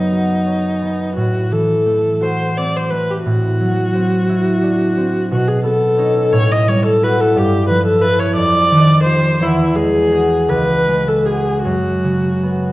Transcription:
0.00 1.20 F#2 soft
0.00 3.31 F#3 soft
0.00 0.81 B3 soft
0.00 0.45 C#4 soft
0.00 1.14 D#4 medium
0.00 1.20 D#4 soft
0.00 0.11 F#4 soft
0.12 2.19 F#4 soft
0.46 1.20 C#4 soft
0.82 1.20 B3 soft
1.16 3.25 A2 soft
1.16 1.54 F#4 medium
1.51 3.29 E3 soft
1.51 2.24 A4 medium
1.86 2.90 A3 soft
2.21 6.11 F#4 soft
2.21 2.59 C5 medium
2.57 3.94 C4 soft
2.57 2.78 D5 medium
2.77 2.92 C5 medium
2.90 6.81 A3 soft
2.90 3.12 B4 medium
3.10 3.24 G4 medium
3.25 5.34 A2 soft
3.25 5.27 F#4 medium
3.60 7.39 F#3 soft
3.95 4.96 C4 soft
4.29 5.33 E4 soft
4.63 5.33 D4 soft
4.97 5.33 C4 soft
5.31 6.36 B2 soft
5.31 5.49 F#4 medium
5.48 5.64 G#4 medium
5.64 8.39 B3 soft
5.64 6.34 A4 medium
5.97 7.39 C#4 soft
5.97 6.35 D#4 soft
6.32 7.39 A2 medium
6.32 6.53 C#5 medium
6.51 6.70 D#5 medium
6.68 9.44 G3 soft
6.68 6.85 C#5 medium
6.86 7.05 A4 medium
7.02 8.01 E4 soft
7.02 7.39 F#4 soft
7.02 7.21 B4 medium
7.20 7.39 A4 medium
7.36 8.39 G2 medium
7.36 7.68 G4 medium
7.69 9.43 F3 soft
7.69 7.86 B4 medium
7.86 8.03 A4 medium
8.01 8.39 E4 soft
8.01 9.44 A4 soft
8.01 8.21 B4 medium
8.19 8.35 C#5 medium
8.36 9.43 F2 medium
8.36 9.03 D5 medium
8.71 9.44 D#3 soft
9.04 9.44 F4 soft
9.04 9.43 G4 soft
9.04 9.43 C5 medium
9.40 10.53 E2 medium
9.40 9.77 E4 medium
9.75 10.86 G#3 soft
9.75 10.51 G#4 medium
10.12 11.24 F#4 soft
10.12 11.24 G#4 soft
10.48 11.68 C#2 soft
10.48 11.09 B4 medium
10.88 12.72 G#3 soft
11.08 11.27 A4 medium
11.25 12.72 F#4 soft
11.25 12.72 G#4 soft
11.25 11.63 G#4 medium
11.64 12.72 F#2 soft
11.64 12.72 F#4 medium
12.04 12.72 C#3 soft
12.43 12.72 B3 soft

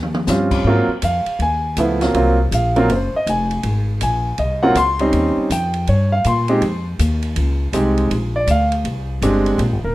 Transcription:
0.00 0.26 D#2 medium
0.00 mid tom medium
0.14 mid tom medium
0.27 0.64 G2 medium
0.27 0.66 G3 medium
0.27 0.65 C4 soft
0.27 0.66 C#4 soft
0.27 0.66 F4 medium
0.27 snare medium
0.27 hi-hat pedal medium
0.51 kick medium
0.51 crash medium
0.64 0.87 G#2 medium
0.64 0.88 F#3 medium
0.64 0.88 A#3 medium
0.64 0.88 C4 medium
0.64 0.88 F4 medium
0.88 muted upright bass stroke soft
1.02 1.25 F2 medium
1.02 1.38 F5 medium
1.02 hi-hat pedal soft
1.02 ride medium
1.26 muted upright bass stroke soft
1.26 ride soft
1.39 1.76 D#2 medium
1.39 1.76 G#5 medium
1.39 ride soft
1.77 2.13 C#2 medium
1.77 1.99 F3 medium
1.77 1.99 A3 medium
1.77 1.99 B3 medium
1.77 2.00 E4 medium
1.77 hi-hat pedal soft
1.77 ride medium
2.01 2.13 F#3 medium
2.01 2.13 A#3 soft
2.01 2.13 C4 soft
2.01 2.14 F4 medium
2.01 snare soft
2.01 ride soft
2.14 2.50 C2 medium
2.14 2.36 F#3 medium
2.14 2.36 A#3 medium
2.14 2.36 C4 medium
2.14 2.36 F4 medium
2.14 ride soft
2.51 2.88 A#1 medium
2.51 2.88 F5 medium
2.51 hi-hat pedal medium
2.51 ride medium
2.76 2.88 F#3 medium
2.76 2.88 A#3 medium
2.76 2.88 C4 medium
2.76 2.88 F4 medium
2.76 ride soft
2.89 3.11 F#1 medium
2.89 3.14 C5 soft
2.89 ride medium
3.14 3.28 D#5 medium
3.14 muted upright bass stroke soft
3.26 3.63 F1 medium
3.26 3.85 G#5 medium
3.26 hi-hat pedal soft
3.26 ride medium
3.51 ride soft
3.63 4.00 G#1 medium
3.63 ride medium
4.01 4.37 A#1 medium
4.01 4.37 G#5 medium
4.01 hi-hat pedal medium
4.01 ride medium
4.38 4.74 C2 medium
4.38 4.62 D#5 medium
4.38 ride soft
4.63 4.74 F#3 medium
4.63 4.75 A#3 medium
4.63 4.75 C4 medium
4.63 4.75 F4 medium
4.63 4.75 F#5 medium
4.75 5.11 C#2 medium
4.75 5.33 C6 loud
4.75 hi-hat pedal soft
4.75 ride medium
4.99 5.48 G3 medium
4.99 5.48 C4 medium
4.99 5.48 C#4 medium
4.99 5.48 D#4 medium
4.99 ride soft
5.13 5.35 D#2 medium
5.13 ride medium
5.37 muted upright bass stroke soft
5.50 5.86 F2 medium
5.50 5.86 G5 medium
5.50 hi-hat pedal medium
5.50 ride medium
5.74 ride soft
5.87 6.24 G2 medium
5.87 6.11 C#5 medium
5.87 ride medium
6.12 6.25 F5 medium
6.24 6.61 A#2 medium
6.24 6.83 C6 medium
6.24 hi-hat pedal soft
6.24 ride medium
6.48 6.61 G#3 medium
6.48 6.61 C4 medium
6.48 6.61 D#4 medium
6.48 6.61 G4 medium
6.48 ride soft
6.61 6.98 F2 medium
6.61 ride medium
6.99 7.35 D#2 medium
6.99 hi-hat pedal medium
6.99 ride medium
7.22 ride soft
7.36 7.72 C#2 medium
7.36 ride medium
7.73 8.09 C2 medium
7.73 8.11 G#3 medium
7.73 8.11 C4 medium
7.73 8.11 D#4 medium
7.73 8.11 G4 medium
7.73 hi-hat pedal soft
7.73 ride medium
7.97 ride soft
8.10 8.46 A#1 medium
8.10 ride medium
8.36 8.48 D5 medium
8.47 8.83 D2 medium
8.47 8.72 F5 medium
8.47 hi-hat pedal medium
8.47 ride medium
8.72 ride soft
8.84 9.21 C2 medium
8.84 ride medium
9.22 9.58 G1 medium
9.22 9.60 G#3 medium
9.22 9.60 C4 medium
9.22 9.60 D4 medium
9.22 9.60 G4 medium
9.22 hi-hat pedal soft
9.22 ride medium
9.46 ride soft
9.58 9.72 A#1 medium
9.58 ride medium
9.72 9.84 G1 medium
9.84 9.95 D#1 medium
9.84 9.95 A#4 medium

